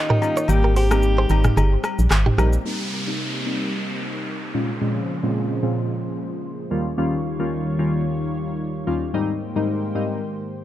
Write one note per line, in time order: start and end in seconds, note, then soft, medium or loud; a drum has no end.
0.00 0.47 D#3 medium
0.00 0.45 A#3 medium
0.00 0.46 C#4 medium
0.00 0.51 D#4 loud
0.00 0.47 F4 medium
0.00 2.61 G4 loud
0.10 0.18 G4 medium
0.10 0.18 A#4 medium
0.10 mid tom loud
0.21 0.39 G3 medium
0.21 0.39 A#3 medium
0.21 0.39 C#4 medium
0.21 0.39 F4 medium
0.21 high agogo medium
0.21 shaker medium
0.37 0.45 A#4 medium
0.37 0.45 C#5 medium
0.37 shaker medium
0.48 1.26 G#1 loud
0.48 0.87 G3 medium
0.48 2.63 G3 medium
0.48 0.87 A#3 medium
0.48 0.87 C4 medium
0.48 2.63 C4 medium
0.48 0.87 D#4 loud
0.48 0.76 G4 loud
0.48 high agogo medium
0.48 shaker medium
0.64 0.73 G4 medium
0.64 0.72 A#4 medium
0.76 1.80 G4 loud
0.76 0.86 G#4 medium
0.76 0.86 C5 medium
0.76 open hi-hat medium
0.76 shaker medium
0.91 1.27 G3 medium
0.91 1.27 A#3 medium
0.91 1.27 C4 medium
0.91 1.27 D#4 medium
0.91 cross-stick loud
0.91 high agogo medium
0.91 shaker medium
1.03 shaker medium
1.18 1.27 G#4 medium
1.18 1.26 C5 medium
1.29 1.50 G#1 medium
1.29 1.55 G3 medium
1.29 1.55 A#3 medium
1.29 1.55 C4 medium
1.29 1.55 D#4 medium
1.29 1.41 G4 medium
1.29 1.40 A#4 medium
1.29 high agogo medium
1.29 shaker medium
1.44 cross-stick loud
1.44 mid tom loud
1.44 shaker medium
1.57 1.77 G1 loud
1.57 1.76 D#4 medium
1.57 1.75 G#4 medium
1.57 high agogo medium
1.57 shaker medium
1.84 cross-stick loud
1.84 high agogo medium
1.84 shaker medium
1.99 2.08 A#1 loud
1.99 shaker medium
2.11 2.31 G#1 medium
2.11 cross-stick loud
2.11 clap loud
2.11 low woodblock medium
2.11 shaker medium
2.26 2.35 D#4 medium
2.26 2.34 G4 medium
2.26 mid tom medium
2.38 2.58 A#1 loud
2.38 2.55 G3 medium
2.38 2.55 A#3 medium
2.38 2.55 C4 medium
2.38 2.55 D#4 medium
2.38 2.48 G4 medium
2.38 2.48 A#4 medium
2.38 cross-stick loud
2.38 high agogo medium
2.38 shaker medium
2.53 shaker medium
2.65 4.52 C3 medium
2.65 2.82 G3 medium
2.65 4.53 G3 medium
2.65 4.53 A#3 medium
2.65 2.82 A#3 medium
2.65 2.82 C4 medium
2.65 4.52 D#4 medium
2.65 2.82 D#4 medium
2.65 4.52 C5 medium
2.65 downlifter medium
3.07 3.43 G3 medium
3.07 3.43 A#3 medium
3.07 3.44 C4 medium
3.07 3.44 D#4 medium
3.46 3.71 G3 medium
3.46 3.71 A#3 medium
3.46 3.71 C4 medium
3.46 3.72 D#4 medium
4.54 4.71 A#2 medium
4.54 6.68 A#2 medium
4.54 6.68 C#3 medium
4.54 6.68 F3 medium
4.54 6.68 G#3 medium
4.54 4.71 G#3 medium
4.54 4.71 C4 medium
4.54 4.71 C#4 medium
4.54 4.72 F4 medium
4.54 6.68 C5 medium
4.81 4.98 A#2 medium
4.81 4.98 G#3 medium
4.81 4.98 C4 medium
4.81 4.98 C#4 medium
4.81 4.99 F4 medium
5.23 5.59 A#2 medium
5.23 5.60 G#3 medium
5.23 5.60 C4 medium
5.23 5.60 C#4 medium
5.23 5.60 F4 medium
5.63 5.88 A#2 medium
5.63 5.88 G#3 medium
5.63 5.88 C4 medium
5.63 5.88 C#4 medium
5.63 5.88 F4 medium
6.70 9.11 D#2 medium
6.70 6.87 D#2 medium
6.70 10.64 D#3 medium
6.70 9.11 G3 medium
6.70 6.88 G3 medium
6.70 6.88 A#3 medium
6.70 6.88 C#4 medium
6.70 9.11 F4 medium
6.70 6.88 F4 medium
6.70 9.11 C#5 medium
6.98 7.14 D#2 medium
6.98 7.15 G3 medium
6.98 7.15 A#3 medium
6.98 7.15 C#4 medium
6.98 7.15 F4 loud
7.39 7.76 D#2 medium
7.39 7.76 G3 medium
7.39 7.76 A#3 medium
7.39 7.76 C#4 medium
7.39 7.76 F4 medium
7.79 8.04 D#2 medium
7.79 8.04 G3 medium
7.79 8.04 A#3 medium
7.79 8.04 C#4 medium
7.79 8.04 F4 medium
8.87 9.04 D#2 medium
8.87 9.04 G3 medium
8.87 9.04 A#3 medium
8.87 9.04 C#4 medium
8.87 9.04 F4 medium
9.14 9.31 G#2 medium
9.14 10.64 G#2 medium
9.14 9.31 G3 medium
9.14 9.31 A#3 medium
9.14 10.64 A#3 medium
9.14 9.31 C4 medium
9.14 9.31 D#4 medium
9.14 10.64 G4 medium
9.14 10.64 C5 medium
9.56 9.92 G#2 medium
9.56 9.92 G3 medium
9.56 9.92 A#3 medium
9.56 9.92 C4 medium
9.56 9.92 D#4 medium
9.95 10.20 G#2 medium
9.95 10.20 G3 medium
9.95 10.20 A#3 medium
9.95 10.20 C4 medium
9.95 10.20 D#4 medium